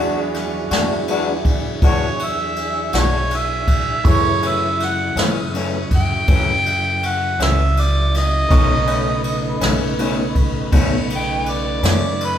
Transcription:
Already playing: E2 F#3 D4 E4 F#4 G#4 B4
0.00 G#3
0.34 snare, ride
0.70 E2 G#3 D4 F#4, snare, ride
1.08 E3 G#3 D4 F#4, ride
1.45 E2, kick, ride
1.82 E2 E3 G#3 D4 F#4, kick, ride
1.87 C#5
2.19 ride
2.24 E5
2.56 ride
2.93 B1 G#3 D4 F#4, snare, ride
2.99 C#5
3.31 ride
3.36 E5
3.67 kick, ride
4.04 F#2 C#3 E3 F#3 A3 C#4 E4 G#4 A4 C#6, kick, ride
4.10 C#5
4.43 E3 A3 C#4, ride
4.48 E5
4.80 snare, ride
4.85 F#5
5.16 F#2 E3 A3 C#4, snare, ride
5.54 F#2 E3 A3 C#4, ride
5.91 F#2, kick, ride
5.96 G5
6.28 F#2 E3 A3 C#4, kick, ride
6.66 ride
7.03 ride
7.07 F#5
7.39 C#2 E3 A3 C#4, snare, ride
7.43 E5
7.77 D5, ride
8.14 D#5, snare, ride
8.47 B1 B2 C#3 D#3 A3 D#4 A4 B4 C#6, kick, ride
8.52 C#4
8.87 D#3 A3 C#4, ride
9.24 ride
9.61 B1 D#3 A3 C#4, snare, ride
9.99 B2 D#3 A3 C#4, ride
10.35 B1, kick, ride
10.72 B1 B2 D#3 A3 C#4, kick, ride
11.10 ride
11.16 G5
11.46 ride
11.51 D5
11.83 F#2 D#3 A3 C#4, snare, ride
12.20 ride
12.26 B4

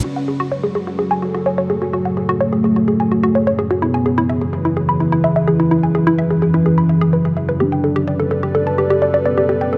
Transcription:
0.04 F#2 C#3 F#3 C#4 F#4 G#4 A4
0.16 F#5
0.28 G#4
0.40 F#4
0.52 C#5
0.64 G#4
0.75 G#4
0.87 F#4
0.99 G#4
1.11 G#5
1.22 F#4
1.35 F#4
1.46 C#5
1.58 C#5
1.70 A3 G#4
1.82 F#4
1.93 F#4
2.05 F#5
2.17 G#4
2.29 F#4
2.41 C#5
2.53 G#4
2.64 G#4
2.76 F#4
2.88 G#4
3.00 G#5
3.12 F#4
3.23 F#4
3.35 C#5
3.47 C#5
3.59 G#4
3.71 F#4
3.82 E3 B3 E4 B4
3.94 G#5
4.06 G#4
4.18 E4
4.29 E5
4.41 G#4
4.53 G#4
4.65 E4
4.77 G#4
4.89 B5
5.00 E4
5.12 E4
5.24 E5
5.36 E5
5.47 E3 G#4
5.60 E4
5.71 E4
5.83 G#5
5.95 G#4
6.07 E4
6.18 E5
6.30 G#4
6.42 G#4
6.54 E4
6.66 G#4
6.78 B5
6.89 E5
7.01 G#4
7.13 B4
7.25 G#4
7.37 E5
7.49 B4
7.60 D4 G4 A4 B4 D5
7.72 G5
7.84 A4
7.96 G4
8.08 D5
8.20 A4
8.31 A4
8.43 G4
8.55 A4
8.67 A5
8.78 G4
8.90 G4
9.02 D5
9.14 D5
9.25 B3 D5
9.38 G4
9.49 G4
9.61 G5
9.73 A4

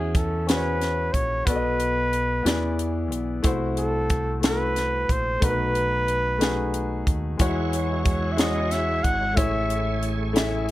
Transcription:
Already playing: E2 E3 C#4 F#4 G#4 E5
0.15 A4, kick, closed hi-hat
0.47 C#4 F#4 G#4 B4 C5, snare, closed hi-hat
0.57 C#5
0.82 snare, closed hi-hat
1.14 A#1 C#5, kick, closed hi-hat
1.45 B1 B2 B3 F#4 A4 B4 D5, kick, closed hi-hat
1.55 D#5
1.80 closed hi-hat
2.13 closed hi-hat
2.43 E2 E3 B3 E4 G4 D5, closed hi-hat
2.47 snare
2.52 G#4
2.79 closed hi-hat
3.12 B1, closed hi-hat
3.43 C2 C3 A3 E4 F#4 C5, kick, closed hi-hat
3.77 A4, closed hi-hat
4.10 kick, closed hi-hat
4.41 A3 E4 F#4 A4, snare, closed hi-hat
4.46 B4
4.76 snare, closed hi-hat
5.09 A#1 C5, kick, closed hi-hat
5.40 B1 B2 A3 D#4 F#4 A#4, kick, closed hi-hat
5.45 B4
5.50 B4
5.75 closed hi-hat
6.08 closed hi-hat
6.38 A3 D#4 F#4 G#4, closed hi-hat
6.42 snare
6.74 closed hi-hat
7.07 D#2, kick, closed hi-hat
7.37 E2 E3 G#3 E4 F#4 B4 C#5, kick, closed hi-hat
7.47 C#5
7.73 C#5, closed hi-hat
8.05 kick, closed hi-hat
8.32 E5
8.37 G#3 E4 F#4 C#5 D#5, snare, closed hi-hat
8.46 C#5
8.71 E5, snare, closed hi-hat
9.04 G#1 F#5, kick, closed hi-hat
9.34 A1 A2 A3 E4 G#4 C#5 E5, kick, closed hi-hat
9.39 A3 E4 G#4 C#5
9.70 closed hi-hat
10.03 closed hi-hat
10.33 A3 E4 G#4 E5, snare, closed hi-hat

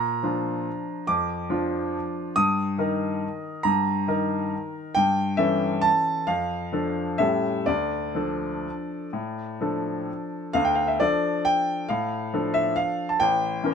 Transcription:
Already playing: A#2 A#5
0.23 F3 D4 F4
1.07 F2 D6
1.50 F3 D4 F4
2.36 G2 D#6
2.78 D#3 D#4 A#4
3.63 G2 A#5
4.08 D#3 D#4 A#4
4.95 G2 G5
5.37 E3 C#4 A4 E5
5.81 A5
6.27 F2 F5
6.72 F3 D4 A4
7.18 A2 G3 C#4 A4 E5
7.66 D2 D5
8.15 F3 D4 A4
9.13 A2
9.61 F3 D4 A4
10.53 D2 F5
10.65 G5
10.75 F5
10.88 E5
11.00 F3 D4 A4 D5
11.45 G5
11.89 A2 F5
12.34 F3 D4 A4
12.54 E5
12.76 F5
13.09 A5
13.20 A1 G5
13.63 E3 C#4 A#4

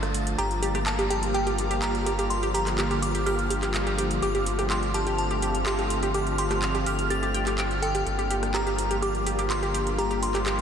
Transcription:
Already playing: G1 D3 F3 A3 D4 F4 A6
0.03 cross-stick, closed hi-hat
0.15 closed hi-hat
0.27 closed hi-hat
0.38 G1 D3 G3 A#3 G4 A#5 F6, closed hi-hat
0.51 closed hi-hat
0.62 G4, closed hi-hat
0.75 G4, cross-stick, closed hi-hat
0.86 A5, clap, closed hi-hat
0.99 G4, closed hi-hat
1.10 G4 G5, closed hi-hat
1.23 closed hi-hat
1.34 G4 G5, closed hi-hat
1.47 G4, closed hi-hat
1.58 closed hi-hat
1.71 G4, closed hi-hat
1.82 G4 A#5, clap, closed hi-hat
1.95 closed hi-hat
2.06 G4, closed hi-hat
2.19 G4, closed hi-hat
2.30 C6, closed hi-hat
2.43 G4, closed hi-hat
2.54 G4 A#5, closed hi-hat
2.67 cross-stick, clap, closed hi-hat
2.78 G4, clap, closed hi-hat
2.91 G4, closed hi-hat
3.02 D6, closed hi-hat
3.15 G4, closed hi-hat
3.26 G4 F6, closed hi-hat
3.39 closed hi-hat
3.50 G4, closed hi-hat
3.63 G4, clap, closed hi-hat
3.74 clap, closed hi-hat
3.87 G4, closed hi-hat
3.98 G4, closed hi-hat
4.11 closed hi-hat
4.22 G1 A3 C4 G4 D6, closed hi-hat
4.35 G4, closed hi-hat
4.46 closed hi-hat
4.59 G4, cross-stick, closed hi-hat
4.70 G4 C6, clap, closed hi-hat
4.83 closed hi-hat
4.94 G4 A5, closed hi-hat
5.07 G4, closed hi-hat
5.18 A5, closed hi-hat
5.31 G4, closed hi-hat
5.42 G4, closed hi-hat
5.55 closed hi-hat
5.66 G4 C6, clap, closed hi-hat
5.79 G4, closed hi-hat
5.90 closed hi-hat
6.03 G4, closed hi-hat
6.14 G4 D6, closed hi-hat
6.27 closed hi-hat
6.38 G4 C6, closed hi-hat
6.51 G4, cross-stick, clap, closed hi-hat
6.62 clap, closed hi-hat
6.75 G4, closed hi-hat
6.86 G4 F6, closed hi-hat
6.99 closed hi-hat
7.10 G4 A6, closed hi-hat
7.23 G4, closed hi-hat
7.34 G5, closed hi-hat
7.47 G4, clap, closed hi-hat
7.58 G5, clap, closed hi-hat
7.71 closed hi-hat
7.82 A4 G5, closed hi-hat
7.95 G4, closed hi-hat
8.06 G1 F3 G3 A#3 F4, closed hi-hat
8.19 G4, closed hi-hat
8.30 G4, closed hi-hat
8.43 cross-stick, closed hi-hat
8.54 G4 A#5, clap, closed hi-hat
8.67 G4, closed hi-hat
8.79 closed hi-hat
8.91 G4, closed hi-hat
9.02 G4 D6, closed hi-hat
9.15 closed hi-hat
9.26 G4, closed hi-hat
9.39 G4, closed hi-hat
9.50 C6, clap, closed hi-hat
9.63 G4, closed hi-hat
9.74 G4, closed hi-hat
9.87 closed hi-hat
9.98 G4 A#5, closed hi-hat
10.11 G4, closed hi-hat
10.23 C6, closed hi-hat
10.35 G4, cross-stick, clap, closed hi-hat
10.46 G4, clap, closed hi-hat

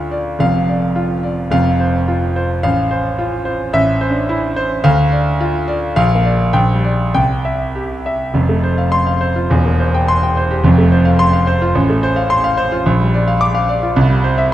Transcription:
Already playing: D2 F4 D5 F5
0.11 D5
0.39 F1 F2 F5
0.68 D5
0.96 F4
1.23 D5
1.50 F1 F2 F5
1.80 C5
2.08 F4
2.36 C5
2.63 A1 F5
2.91 C5
3.19 F4
3.45 C5
3.73 A1 E5
4.01 C5
4.10 D4
4.29 E4
4.56 C5
4.84 D2 F5
5.12 D5
5.41 F4
5.68 D5
5.96 A#1 F5
6.15 A#3
6.25 D5
6.53 A#1 G5
6.74 G3
6.84 D5
7.14 C2 G5
7.45 E5
7.75 G4
8.06 E5
8.34 F1 F2
8.49 A3
8.63 C5
8.78 F5
8.92 C6
9.07 F5
9.21 C5
9.36 F4
9.50 E1 E2
9.66 A#3
9.80 C5
9.94 G5
10.08 C6
10.23 G5
10.37 C5
10.51 G4
10.64 F1 F2
10.78 A3
10.92 C5
11.05 F5
11.19 C6
11.33 F5
11.47 C5
11.62 F4
11.75 A1
11.90 A3
12.03 C5
12.16 F5
12.30 C6
12.44 F5
12.57 C5
12.72 F4
12.86 A#1
13.00 G3
13.14 D5
13.28 F5
13.41 D6
13.55 F5
13.69 D5
13.83 F4
13.96 C2
14.10 G3
14.24 C5
14.38 E5

